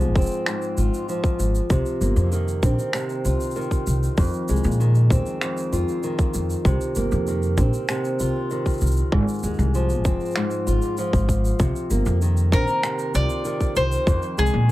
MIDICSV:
0, 0, Header, 1, 5, 480
1, 0, Start_track
1, 0, Key_signature, -3, "minor"
1, 0, Tempo, 618557
1, 1322, Time_signature, 4, 2, 24, 8
1, 11420, End_track
2, 0, Start_track
2, 0, Title_t, "Mandolin"
2, 0, Program_c, 0, 25
2, 9726, Note_on_c, 0, 70, 98
2, 10202, Note_off_c, 0, 70, 0
2, 10205, Note_on_c, 0, 74, 97
2, 10679, Note_off_c, 0, 74, 0
2, 10682, Note_on_c, 0, 72, 92
2, 11165, Note_on_c, 0, 68, 90
2, 11176, Note_off_c, 0, 72, 0
2, 11420, Note_off_c, 0, 68, 0
2, 11420, End_track
3, 0, Start_track
3, 0, Title_t, "Steel-string acoustic guitar"
3, 0, Program_c, 1, 25
3, 0, Note_on_c, 1, 44, 72
3, 0, Note_on_c, 1, 53, 62
3, 0, Note_on_c, 1, 56, 54
3, 0, Note_on_c, 1, 60, 62
3, 0, Note_on_c, 1, 65, 65
3, 126, Note_off_c, 1, 60, 0
3, 129, Note_on_c, 1, 60, 57
3, 356, Note_off_c, 1, 44, 0
3, 365, Note_on_c, 1, 44, 72
3, 605, Note_off_c, 1, 65, 0
3, 608, Note_on_c, 1, 65, 60
3, 841, Note_off_c, 1, 53, 0
3, 845, Note_on_c, 1, 53, 62
3, 1323, Note_on_c, 1, 48, 81
3, 1371, Note_off_c, 1, 44, 0
3, 1373, Note_off_c, 1, 56, 0
3, 1564, Note_on_c, 1, 58, 56
3, 1587, Note_off_c, 1, 60, 0
3, 1800, Note_off_c, 1, 53, 0
3, 1803, Note_on_c, 1, 51, 58
3, 1826, Note_off_c, 1, 65, 0
3, 2043, Note_on_c, 1, 60, 57
3, 2273, Note_off_c, 1, 48, 0
3, 2282, Note_on_c, 1, 48, 80
3, 2522, Note_on_c, 1, 65, 62
3, 2759, Note_off_c, 1, 51, 0
3, 2762, Note_on_c, 1, 51, 65
3, 3244, Note_on_c, 1, 41, 78
3, 3290, Note_off_c, 1, 48, 0
3, 3291, Note_off_c, 1, 58, 0
3, 3485, Note_on_c, 1, 56, 53
3, 3721, Note_off_c, 1, 51, 0
3, 3724, Note_on_c, 1, 51, 66
3, 3747, Note_off_c, 1, 65, 0
3, 3961, Note_off_c, 1, 60, 0
3, 3964, Note_on_c, 1, 60, 61
3, 4194, Note_off_c, 1, 41, 0
3, 4204, Note_on_c, 1, 41, 77
3, 4443, Note_on_c, 1, 65, 66
3, 4680, Note_off_c, 1, 51, 0
3, 4683, Note_on_c, 1, 51, 63
3, 5164, Note_on_c, 1, 48, 79
3, 5211, Note_off_c, 1, 41, 0
3, 5211, Note_off_c, 1, 56, 0
3, 5405, Note_on_c, 1, 58, 56
3, 5428, Note_off_c, 1, 60, 0
3, 5643, Note_off_c, 1, 51, 0
3, 5646, Note_on_c, 1, 51, 65
3, 5669, Note_off_c, 1, 65, 0
3, 5885, Note_on_c, 1, 60, 58
3, 6118, Note_off_c, 1, 48, 0
3, 6127, Note_on_c, 1, 48, 81
3, 6364, Note_on_c, 1, 65, 68
3, 6600, Note_off_c, 1, 51, 0
3, 6604, Note_on_c, 1, 51, 65
3, 7081, Note_on_c, 1, 44, 72
3, 7131, Note_off_c, 1, 58, 0
3, 7133, Note_off_c, 1, 48, 0
3, 7323, Note_on_c, 1, 56, 51
3, 7560, Note_off_c, 1, 51, 0
3, 7564, Note_on_c, 1, 53, 64
3, 7801, Note_off_c, 1, 60, 0
3, 7805, Note_on_c, 1, 60, 58
3, 8032, Note_off_c, 1, 44, 0
3, 8041, Note_on_c, 1, 44, 85
3, 8276, Note_off_c, 1, 65, 0
3, 8280, Note_on_c, 1, 65, 64
3, 8520, Note_off_c, 1, 53, 0
3, 8523, Note_on_c, 1, 53, 66
3, 9002, Note_on_c, 1, 48, 76
3, 9049, Note_off_c, 1, 44, 0
3, 9050, Note_off_c, 1, 56, 0
3, 9241, Note_on_c, 1, 58, 52
3, 9264, Note_off_c, 1, 60, 0
3, 9480, Note_off_c, 1, 53, 0
3, 9483, Note_on_c, 1, 51, 66
3, 9507, Note_off_c, 1, 65, 0
3, 9722, Note_on_c, 1, 60, 62
3, 9950, Note_off_c, 1, 48, 0
3, 9960, Note_on_c, 1, 48, 75
3, 10200, Note_on_c, 1, 65, 60
3, 10433, Note_off_c, 1, 51, 0
3, 10436, Note_on_c, 1, 51, 63
3, 10921, Note_on_c, 1, 41, 83
3, 10969, Note_off_c, 1, 48, 0
3, 10969, Note_off_c, 1, 58, 0
3, 11159, Note_on_c, 1, 56, 57
3, 11398, Note_off_c, 1, 51, 0
3, 11420, Note_off_c, 1, 41, 0
3, 11420, Note_off_c, 1, 56, 0
3, 11420, Note_off_c, 1, 60, 0
3, 11420, Note_off_c, 1, 65, 0
3, 11420, End_track
4, 0, Start_track
4, 0, Title_t, "Upright bass"
4, 0, Program_c, 2, 32
4, 0, Note_on_c, 2, 36, 99
4, 118, Note_off_c, 2, 36, 0
4, 118, Note_on_c, 2, 29, 90
4, 194, Note_off_c, 2, 29, 0
4, 600, Note_on_c, 2, 32, 72
4, 675, Note_off_c, 2, 32, 0
4, 1080, Note_on_c, 2, 32, 69
4, 1229, Note_off_c, 2, 32, 0
4, 1319, Note_on_c, 2, 36, 88
4, 1394, Note_off_c, 2, 36, 0
4, 1559, Note_on_c, 2, 31, 75
4, 1634, Note_off_c, 2, 31, 0
4, 1678, Note_on_c, 2, 41, 88
4, 2038, Note_on_c, 2, 34, 99
4, 2050, Note_off_c, 2, 41, 0
4, 2114, Note_off_c, 2, 34, 0
4, 2521, Note_on_c, 2, 36, 75
4, 2595, Note_off_c, 2, 36, 0
4, 3004, Note_on_c, 2, 36, 77
4, 3151, Note_off_c, 2, 36, 0
4, 3240, Note_on_c, 2, 41, 90
4, 3315, Note_off_c, 2, 41, 0
4, 3484, Note_on_c, 2, 36, 75
4, 3557, Note_off_c, 2, 36, 0
4, 3604, Note_on_c, 2, 46, 98
4, 3961, Note_on_c, 2, 39, 94
4, 3972, Note_off_c, 2, 46, 0
4, 4035, Note_off_c, 2, 39, 0
4, 4443, Note_on_c, 2, 41, 76
4, 4516, Note_off_c, 2, 41, 0
4, 4924, Note_on_c, 2, 41, 73
4, 5071, Note_off_c, 2, 41, 0
4, 5159, Note_on_c, 2, 36, 93
4, 5235, Note_off_c, 2, 36, 0
4, 5402, Note_on_c, 2, 31, 74
4, 5476, Note_off_c, 2, 31, 0
4, 5523, Note_on_c, 2, 41, 94
4, 5877, Note_on_c, 2, 34, 102
4, 5889, Note_off_c, 2, 41, 0
4, 5953, Note_off_c, 2, 34, 0
4, 6363, Note_on_c, 2, 36, 67
4, 6436, Note_off_c, 2, 36, 0
4, 6841, Note_on_c, 2, 36, 81
4, 6989, Note_off_c, 2, 36, 0
4, 7079, Note_on_c, 2, 32, 92
4, 7154, Note_off_c, 2, 32, 0
4, 7320, Note_on_c, 2, 39, 71
4, 7395, Note_off_c, 2, 39, 0
4, 7439, Note_on_c, 2, 36, 98
4, 7799, Note_off_c, 2, 36, 0
4, 7799, Note_on_c, 2, 29, 90
4, 7875, Note_off_c, 2, 29, 0
4, 8279, Note_on_c, 2, 32, 66
4, 8355, Note_off_c, 2, 32, 0
4, 8638, Note_on_c, 2, 32, 78
4, 8926, Note_off_c, 2, 32, 0
4, 8998, Note_on_c, 2, 36, 88
4, 9074, Note_off_c, 2, 36, 0
4, 9237, Note_on_c, 2, 31, 74
4, 9313, Note_off_c, 2, 31, 0
4, 9359, Note_on_c, 2, 41, 96
4, 9717, Note_on_c, 2, 34, 90
4, 9729, Note_off_c, 2, 41, 0
4, 9793, Note_off_c, 2, 34, 0
4, 10199, Note_on_c, 2, 36, 75
4, 10275, Note_off_c, 2, 36, 0
4, 10680, Note_on_c, 2, 36, 70
4, 10829, Note_off_c, 2, 36, 0
4, 10917, Note_on_c, 2, 41, 91
4, 10993, Note_off_c, 2, 41, 0
4, 11159, Note_on_c, 2, 36, 73
4, 11234, Note_off_c, 2, 36, 0
4, 11279, Note_on_c, 2, 46, 99
4, 11420, Note_off_c, 2, 46, 0
4, 11420, End_track
5, 0, Start_track
5, 0, Title_t, "Drums"
5, 3, Note_on_c, 9, 82, 36
5, 81, Note_off_c, 9, 82, 0
5, 120, Note_on_c, 9, 36, 103
5, 126, Note_on_c, 9, 82, 39
5, 165, Note_off_c, 9, 82, 0
5, 165, Note_on_c, 9, 82, 50
5, 198, Note_off_c, 9, 36, 0
5, 205, Note_off_c, 9, 82, 0
5, 205, Note_on_c, 9, 82, 63
5, 242, Note_off_c, 9, 82, 0
5, 242, Note_on_c, 9, 82, 41
5, 319, Note_off_c, 9, 82, 0
5, 360, Note_on_c, 9, 26, 72
5, 366, Note_on_c, 9, 82, 61
5, 438, Note_off_c, 9, 26, 0
5, 444, Note_off_c, 9, 82, 0
5, 480, Note_on_c, 9, 82, 40
5, 557, Note_off_c, 9, 82, 0
5, 600, Note_on_c, 9, 82, 79
5, 678, Note_off_c, 9, 82, 0
5, 729, Note_on_c, 9, 82, 48
5, 806, Note_off_c, 9, 82, 0
5, 844, Note_on_c, 9, 82, 52
5, 922, Note_off_c, 9, 82, 0
5, 960, Note_on_c, 9, 36, 95
5, 964, Note_on_c, 9, 82, 37
5, 1037, Note_off_c, 9, 36, 0
5, 1042, Note_off_c, 9, 82, 0
5, 1082, Note_on_c, 9, 82, 77
5, 1160, Note_off_c, 9, 82, 0
5, 1202, Note_on_c, 9, 82, 52
5, 1279, Note_off_c, 9, 82, 0
5, 1319, Note_on_c, 9, 82, 58
5, 1320, Note_on_c, 9, 36, 106
5, 1397, Note_off_c, 9, 36, 0
5, 1397, Note_off_c, 9, 82, 0
5, 1440, Note_on_c, 9, 82, 35
5, 1518, Note_off_c, 9, 82, 0
5, 1562, Note_on_c, 9, 82, 75
5, 1640, Note_off_c, 9, 82, 0
5, 1678, Note_on_c, 9, 82, 45
5, 1756, Note_off_c, 9, 82, 0
5, 1801, Note_on_c, 9, 82, 55
5, 1879, Note_off_c, 9, 82, 0
5, 1924, Note_on_c, 9, 82, 35
5, 2002, Note_off_c, 9, 82, 0
5, 2039, Note_on_c, 9, 36, 101
5, 2040, Note_on_c, 9, 82, 80
5, 2117, Note_off_c, 9, 36, 0
5, 2117, Note_off_c, 9, 82, 0
5, 2164, Note_on_c, 9, 82, 45
5, 2242, Note_off_c, 9, 82, 0
5, 2276, Note_on_c, 9, 26, 68
5, 2281, Note_on_c, 9, 82, 54
5, 2353, Note_off_c, 9, 26, 0
5, 2359, Note_off_c, 9, 82, 0
5, 2401, Note_on_c, 9, 82, 33
5, 2478, Note_off_c, 9, 82, 0
5, 2522, Note_on_c, 9, 82, 84
5, 2600, Note_off_c, 9, 82, 0
5, 2642, Note_on_c, 9, 82, 46
5, 2719, Note_off_c, 9, 82, 0
5, 2721, Note_on_c, 9, 82, 38
5, 2759, Note_off_c, 9, 82, 0
5, 2759, Note_on_c, 9, 82, 49
5, 2800, Note_off_c, 9, 82, 0
5, 2800, Note_on_c, 9, 82, 33
5, 2878, Note_off_c, 9, 82, 0
5, 2880, Note_on_c, 9, 36, 53
5, 2882, Note_on_c, 9, 82, 43
5, 2957, Note_off_c, 9, 36, 0
5, 2959, Note_off_c, 9, 82, 0
5, 3002, Note_on_c, 9, 82, 76
5, 3079, Note_off_c, 9, 82, 0
5, 3128, Note_on_c, 9, 82, 48
5, 3206, Note_off_c, 9, 82, 0
5, 3238, Note_on_c, 9, 82, 51
5, 3240, Note_on_c, 9, 36, 98
5, 3256, Note_off_c, 9, 82, 0
5, 3256, Note_on_c, 9, 82, 44
5, 3272, Note_off_c, 9, 82, 0
5, 3272, Note_on_c, 9, 82, 35
5, 3289, Note_off_c, 9, 82, 0
5, 3289, Note_on_c, 9, 82, 30
5, 3308, Note_off_c, 9, 82, 0
5, 3308, Note_on_c, 9, 82, 25
5, 3318, Note_off_c, 9, 36, 0
5, 3325, Note_off_c, 9, 82, 0
5, 3325, Note_on_c, 9, 82, 20
5, 3341, Note_off_c, 9, 82, 0
5, 3341, Note_on_c, 9, 82, 16
5, 3362, Note_off_c, 9, 82, 0
5, 3362, Note_on_c, 9, 82, 39
5, 3440, Note_off_c, 9, 82, 0
5, 3478, Note_on_c, 9, 82, 77
5, 3537, Note_off_c, 9, 82, 0
5, 3537, Note_on_c, 9, 82, 62
5, 3598, Note_off_c, 9, 82, 0
5, 3598, Note_on_c, 9, 82, 50
5, 3658, Note_off_c, 9, 82, 0
5, 3658, Note_on_c, 9, 82, 37
5, 3730, Note_off_c, 9, 82, 0
5, 3730, Note_on_c, 9, 82, 48
5, 3807, Note_off_c, 9, 82, 0
5, 3840, Note_on_c, 9, 82, 38
5, 3918, Note_off_c, 9, 82, 0
5, 3961, Note_on_c, 9, 36, 96
5, 3969, Note_on_c, 9, 82, 84
5, 4039, Note_off_c, 9, 36, 0
5, 4047, Note_off_c, 9, 82, 0
5, 4081, Note_on_c, 9, 82, 39
5, 4158, Note_off_c, 9, 82, 0
5, 4201, Note_on_c, 9, 26, 63
5, 4204, Note_on_c, 9, 82, 54
5, 4279, Note_off_c, 9, 26, 0
5, 4282, Note_off_c, 9, 82, 0
5, 4323, Note_on_c, 9, 82, 42
5, 4401, Note_off_c, 9, 82, 0
5, 4445, Note_on_c, 9, 82, 72
5, 4523, Note_off_c, 9, 82, 0
5, 4566, Note_on_c, 9, 82, 41
5, 4643, Note_off_c, 9, 82, 0
5, 4680, Note_on_c, 9, 82, 53
5, 4757, Note_off_c, 9, 82, 0
5, 4801, Note_on_c, 9, 36, 88
5, 4801, Note_on_c, 9, 82, 38
5, 4879, Note_off_c, 9, 36, 0
5, 4879, Note_off_c, 9, 82, 0
5, 4920, Note_on_c, 9, 82, 83
5, 4997, Note_off_c, 9, 82, 0
5, 5044, Note_on_c, 9, 82, 45
5, 5121, Note_off_c, 9, 82, 0
5, 5160, Note_on_c, 9, 36, 100
5, 5164, Note_on_c, 9, 82, 52
5, 5238, Note_off_c, 9, 36, 0
5, 5242, Note_off_c, 9, 82, 0
5, 5283, Note_on_c, 9, 82, 42
5, 5361, Note_off_c, 9, 82, 0
5, 5395, Note_on_c, 9, 82, 79
5, 5473, Note_off_c, 9, 82, 0
5, 5522, Note_on_c, 9, 82, 43
5, 5599, Note_off_c, 9, 82, 0
5, 5641, Note_on_c, 9, 82, 47
5, 5719, Note_off_c, 9, 82, 0
5, 5761, Note_on_c, 9, 82, 34
5, 5839, Note_off_c, 9, 82, 0
5, 5878, Note_on_c, 9, 82, 81
5, 5879, Note_on_c, 9, 36, 88
5, 5955, Note_off_c, 9, 82, 0
5, 5957, Note_off_c, 9, 36, 0
5, 6002, Note_on_c, 9, 82, 44
5, 6080, Note_off_c, 9, 82, 0
5, 6118, Note_on_c, 9, 82, 54
5, 6120, Note_on_c, 9, 26, 64
5, 6196, Note_off_c, 9, 82, 0
5, 6198, Note_off_c, 9, 26, 0
5, 6243, Note_on_c, 9, 82, 38
5, 6320, Note_off_c, 9, 82, 0
5, 6359, Note_on_c, 9, 82, 77
5, 6437, Note_off_c, 9, 82, 0
5, 6599, Note_on_c, 9, 82, 51
5, 6677, Note_off_c, 9, 82, 0
5, 6719, Note_on_c, 9, 36, 50
5, 6719, Note_on_c, 9, 82, 39
5, 6749, Note_off_c, 9, 82, 0
5, 6749, Note_on_c, 9, 82, 30
5, 6778, Note_off_c, 9, 82, 0
5, 6778, Note_on_c, 9, 82, 25
5, 6797, Note_off_c, 9, 36, 0
5, 6809, Note_off_c, 9, 82, 0
5, 6809, Note_on_c, 9, 82, 22
5, 6835, Note_off_c, 9, 82, 0
5, 6835, Note_on_c, 9, 82, 84
5, 6838, Note_off_c, 9, 82, 0
5, 6838, Note_on_c, 9, 82, 17
5, 6871, Note_off_c, 9, 82, 0
5, 6871, Note_on_c, 9, 82, 14
5, 6879, Note_off_c, 9, 82, 0
5, 6879, Note_on_c, 9, 82, 66
5, 6898, Note_off_c, 9, 82, 0
5, 6898, Note_on_c, 9, 82, 12
5, 6916, Note_off_c, 9, 82, 0
5, 6916, Note_on_c, 9, 82, 53
5, 6929, Note_off_c, 9, 82, 0
5, 6929, Note_on_c, 9, 82, 9
5, 6957, Note_off_c, 9, 82, 0
5, 6957, Note_on_c, 9, 82, 43
5, 7035, Note_off_c, 9, 82, 0
5, 7079, Note_on_c, 9, 36, 103
5, 7156, Note_off_c, 9, 36, 0
5, 7202, Note_on_c, 9, 82, 56
5, 7243, Note_off_c, 9, 82, 0
5, 7243, Note_on_c, 9, 82, 30
5, 7281, Note_off_c, 9, 82, 0
5, 7281, Note_on_c, 9, 82, 23
5, 7319, Note_off_c, 9, 82, 0
5, 7319, Note_on_c, 9, 82, 69
5, 7396, Note_off_c, 9, 82, 0
5, 7400, Note_on_c, 9, 82, 12
5, 7441, Note_off_c, 9, 82, 0
5, 7441, Note_on_c, 9, 82, 41
5, 7519, Note_off_c, 9, 82, 0
5, 7561, Note_on_c, 9, 82, 51
5, 7638, Note_off_c, 9, 82, 0
5, 7678, Note_on_c, 9, 82, 37
5, 7755, Note_off_c, 9, 82, 0
5, 7797, Note_on_c, 9, 82, 83
5, 7799, Note_on_c, 9, 36, 88
5, 7874, Note_off_c, 9, 82, 0
5, 7876, Note_off_c, 9, 36, 0
5, 7917, Note_on_c, 9, 82, 19
5, 7958, Note_off_c, 9, 82, 0
5, 7958, Note_on_c, 9, 82, 27
5, 7998, Note_off_c, 9, 82, 0
5, 7998, Note_on_c, 9, 82, 31
5, 8034, Note_off_c, 9, 82, 0
5, 8034, Note_on_c, 9, 82, 53
5, 8036, Note_on_c, 9, 26, 77
5, 8112, Note_off_c, 9, 82, 0
5, 8114, Note_off_c, 9, 26, 0
5, 8152, Note_on_c, 9, 82, 39
5, 8230, Note_off_c, 9, 82, 0
5, 8282, Note_on_c, 9, 82, 82
5, 8359, Note_off_c, 9, 82, 0
5, 8395, Note_on_c, 9, 82, 47
5, 8472, Note_off_c, 9, 82, 0
5, 8516, Note_on_c, 9, 82, 55
5, 8593, Note_off_c, 9, 82, 0
5, 8639, Note_on_c, 9, 36, 88
5, 8643, Note_on_c, 9, 82, 40
5, 8717, Note_off_c, 9, 36, 0
5, 8721, Note_off_c, 9, 82, 0
5, 8759, Note_on_c, 9, 36, 54
5, 8762, Note_on_c, 9, 82, 76
5, 8836, Note_off_c, 9, 36, 0
5, 8840, Note_off_c, 9, 82, 0
5, 8884, Note_on_c, 9, 82, 43
5, 8961, Note_off_c, 9, 82, 0
5, 8996, Note_on_c, 9, 82, 56
5, 8999, Note_on_c, 9, 36, 106
5, 9074, Note_off_c, 9, 82, 0
5, 9076, Note_off_c, 9, 36, 0
5, 9123, Note_on_c, 9, 82, 41
5, 9201, Note_off_c, 9, 82, 0
5, 9238, Note_on_c, 9, 82, 87
5, 9315, Note_off_c, 9, 82, 0
5, 9356, Note_on_c, 9, 82, 45
5, 9434, Note_off_c, 9, 82, 0
5, 9479, Note_on_c, 9, 82, 56
5, 9557, Note_off_c, 9, 82, 0
5, 9599, Note_on_c, 9, 82, 39
5, 9676, Note_off_c, 9, 82, 0
5, 9718, Note_on_c, 9, 36, 95
5, 9721, Note_on_c, 9, 82, 72
5, 9795, Note_off_c, 9, 36, 0
5, 9799, Note_off_c, 9, 82, 0
5, 9836, Note_on_c, 9, 82, 42
5, 9913, Note_off_c, 9, 82, 0
5, 9959, Note_on_c, 9, 26, 68
5, 9960, Note_on_c, 9, 82, 58
5, 10037, Note_off_c, 9, 26, 0
5, 10038, Note_off_c, 9, 82, 0
5, 10078, Note_on_c, 9, 82, 42
5, 10156, Note_off_c, 9, 82, 0
5, 10200, Note_on_c, 9, 82, 87
5, 10278, Note_off_c, 9, 82, 0
5, 10316, Note_on_c, 9, 82, 45
5, 10394, Note_off_c, 9, 82, 0
5, 10435, Note_on_c, 9, 82, 58
5, 10512, Note_off_c, 9, 82, 0
5, 10558, Note_on_c, 9, 36, 53
5, 10558, Note_on_c, 9, 82, 42
5, 10635, Note_off_c, 9, 36, 0
5, 10636, Note_off_c, 9, 82, 0
5, 10677, Note_on_c, 9, 82, 84
5, 10755, Note_off_c, 9, 82, 0
5, 10800, Note_on_c, 9, 82, 51
5, 10878, Note_off_c, 9, 82, 0
5, 10917, Note_on_c, 9, 36, 115
5, 10923, Note_on_c, 9, 82, 50
5, 10995, Note_off_c, 9, 36, 0
5, 11001, Note_off_c, 9, 82, 0
5, 11037, Note_on_c, 9, 82, 37
5, 11114, Note_off_c, 9, 82, 0
5, 11159, Note_on_c, 9, 82, 77
5, 11222, Note_off_c, 9, 82, 0
5, 11222, Note_on_c, 9, 82, 51
5, 11299, Note_off_c, 9, 82, 0
5, 11420, End_track
0, 0, End_of_file